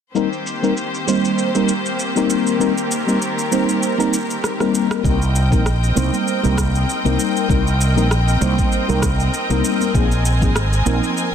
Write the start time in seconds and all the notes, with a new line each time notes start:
0.15 D#3 G3 A#3 C4 D#4 G4 A#4 C5, shaker
0.33 shaker
0.47 shaker
0.62 G3 A#3 C4 D#4 A#4, shaker
0.77 shaker
0.94 shaker
1.07 G3 A#3 C4 D#4 C5, shaker
1.25 shaker
1.38 shaker
1.55 G3 A#3 C4 D#4 A#4, shaker
1.69 shaker
1.86 shaker
1.99 shaker
2.16 G3 A#3 C4 D#4 A#4, shaker
2.30 shaker
2.47 shaker
2.59 G3 A#3 C4 D#4 A#4, shaker
2.78 shaker
2.92 shaker
3.07 G3 A#3 C4 D#4 A#4, shaker
3.22 shaker
3.39 shaker
3.51 G3 A#3 C4 D#4 C5, shaker
3.69 shaker
3.83 shaker
3.98 G3 A#3 C4 D#4 A#4, shaker
4.14 shaker
4.31 shaker
4.44 cross-stick, shaker
4.60 G3 A#3 C4 D#4 A#4, cross-stick, shaker
4.75 shaker
4.91 cross-stick, shaker
5.04 C2 G3 A#3 C4 D#4 A#4 D#5 G5, kick, shaker
5.22 shaker
5.36 shaker
5.51 A#1 G3 A#3 C4 D#4 A#4, kick, shaker
5.66 cross-stick, shaker
5.84 shaker
5.95 C2 G3 A#3 C4 D#4 C5, high conga, low conga, shaker
6.14 shaker
6.28 shaker
6.43 C2 G3 A#3 C4 D#4 A#4, low conga, shaker
6.58 kick, cross-stick, shaker
6.75 shaker
6.89 shaker
7.04 C2 G3 A#3 C4 D#4 A#4, shaker
7.20 shaker
7.37 shaker
7.49 C2 G3 A#3 C4 D#4 A#4, kick, shaker
7.67 shaker
7.81 shaker
7.96 A#1 G3 A#3 C4 D#4 A#4, shaker
8.11 cross-stick, shaker
8.28 shaker
8.41 C2 G3 A#3 C4 D#4 C5, high conga, low conga, shaker
8.59 kick, shaker
8.72 shaker
8.88 C2 G3 A#3 C4 D#4 A#4, low conga, shaker
9.02 kick, cross-stick, shaker
9.20 shaker
9.34 shaker
9.50 C2 G3 A#3 C4 D#4 A#4, high conga, shaker
9.65 shaker
9.80 high conga, shaker
9.94 A#1 F3 A#3 C4 D#4 G#4 G#5, kick, shaker
10.12 shaker
10.25 shaker
10.42 G#1 F3 A#3 C4 D#4 G#4, kick, shaker
10.56 cross-stick, shaker
10.73 shaker
10.86 A#1 F3 A#3 C4 D#4 A#4, high conga, low conga, shaker
11.04 shaker
11.18 shaker